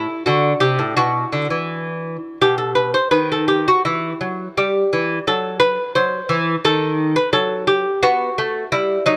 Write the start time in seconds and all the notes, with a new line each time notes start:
Already playing: E4
0.26 D3 F#4
0.60 C3 G4
0.79 A2
0.97 B2 E4 F#4
1.32 D3
1.50 E3
2.41 B2 G4
2.58 A4
2.75 B4
2.94 C5
3.11 D#3 B4
3.32 A4
3.48 G4
3.68 F#4
3.85 E3 E4
4.21 F#3
4.57 G3 G4
4.93 E3
5.27 F#3 A4
5.60 B4
5.95 F#3 C5
6.29 E3
6.65 D#3 A4
7.16 B4
7.33 F#3 A4
7.67 G4
8.03 B3 F#4
8.38 A3
8.72 G3 E4
9.06 F#3 D#4